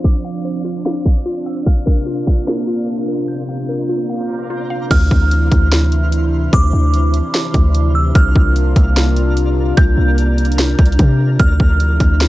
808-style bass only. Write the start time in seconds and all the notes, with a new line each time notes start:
4.91 D2
5.11 D2
5.52 D2
6.53 D2
6.73 D2
7.54 D2
8.15 C2
8.35 C2
8.76 C2
9.77 C2
9.98 C2
10.79 C2
10.99 C3
11.40 D2
11.60 D2
12.00 D2